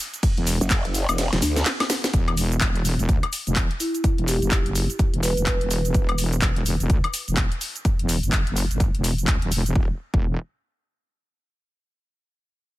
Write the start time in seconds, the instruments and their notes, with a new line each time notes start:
0.14 closed hi-hat, cabasa
0.23 kick, closed hi-hat, ride, cabasa
0.37 wobble bass E1, closed hi-hat
0.47 open hi-hat, cabasa
0.61 wobble bass F#1, closed hi-hat, cabasa
0.70 kick, clap, closed hi-hat, ride, cabasa
0.85 closed hi-hat
0.94 open hi-hat, cabasa
1.09 wobble bass E1, closed hi-hat, cabasa, high woodblock
1.18 snare, closed hi-hat, ride, cabasa
1.33 wobble bass E1, snare, closed hi-hat
1.42 wobble bass D2, open hi-hat, cabasa
1.56 snare, closed hi-hat, cabasa
1.66 snare, clap, closed hi-hat, ride, cabasa
1.80 snare, closed hi-hat, high woodblock
1.90 snare, open hi-hat, cabasa
2.04 snare, closed hi-hat, cabasa
2.14 wobble bass E1, kick, closed hi-hat, cabasa
2.28 closed hi-hat, high woodblock
2.37 open hi-hat, cabasa
2.52 closed hi-hat, cabasa
2.61 wobble bass E1, kick, clap, closed hi-hat, cabasa
2.76 closed hi-hat
2.85 open hi-hat, cabasa
2.99 wobble bass E1, closed hi-hat, cabasa
3.09 wobble bass D2, kick, closed hi-hat, cabasa
3.23 closed hi-hat, high woodblock
3.33 open hi-hat, cabasa
3.47 wobble bass E1, closed hi-hat, cabasa
3.56 kick, clap, closed hi-hat, cabasa
3.71 closed hi-hat
3.80 marimba E4, open hi-hat, cabasa
3.95 closed hi-hat, cabasa
4.04 kick, closed hi-hat, cabasa
4.18 wobble bass E1, closed hi-hat
4.28 marimba G4, open hi-hat, cabasa
4.42 wobble bass F#1, closed hi-hat, cabasa
4.51 kick, clap, closed hi-hat, cabasa
4.66 closed hi-hat
4.75 open hi-hat, cabasa
4.90 closed hi-hat, cabasa
4.99 kick, closed hi-hat, cabasa
5.14 wobble bass E1, closed hi-hat
5.23 marimba B4, open hi-hat, cabasa
5.37 wobble bass E1, closed hi-hat, cabasa
5.46 kick, clap, closed hi-hat, cabasa
5.61 wobble bass E1, closed hi-hat
5.71 open hi-hat, cabasa
5.85 closed hi-hat, cabasa
5.94 wobble bass E1, kick, closed hi-hat, cabasa
6.09 closed hi-hat, high woodblock
6.18 open hi-hat, cabasa
6.33 closed hi-hat, cabasa
6.42 wobble bass E1, kick, clap, closed hi-hat, cabasa
6.56 closed hi-hat
6.66 open hi-hat, cabasa
6.80 wobble bass E1, closed hi-hat, cabasa
6.90 wobble bass D2, kick, closed hi-hat, cabasa
7.04 closed hi-hat, high woodblock
7.14 open hi-hat, cabasa
7.28 wobble bass E1, closed hi-hat, cabasa
7.37 kick, clap, closed hi-hat, cabasa
7.52 closed hi-hat
7.61 open hi-hat, cabasa
7.76 closed hi-hat, cabasa
7.85 kick, closed hi-hat, cabasa
7.99 wobble bass E1, closed hi-hat
8.09 open hi-hat, cabasa
8.23 wobble bass F#1, closed hi-hat, cabasa
8.32 kick, clap, closed hi-hat, cabasa
8.47 closed hi-hat
8.56 open hi-hat, cabasa
8.71 wobble bass G1, closed hi-hat, cabasa
8.80 kick, closed hi-hat, cabasa
8.95 wobble bass E1, closed hi-hat
9.04 open hi-hat, cabasa
9.18 closed hi-hat, cabasa
9.27 wobble bass D2, kick, clap, closed hi-hat, cabasa
9.42 wobble bass E1, closed hi-hat
9.52 open hi-hat, cabasa
9.66 closed hi-hat, cabasa
9.75 wobble bass E1, kick
10.14 wobble bass E1, kick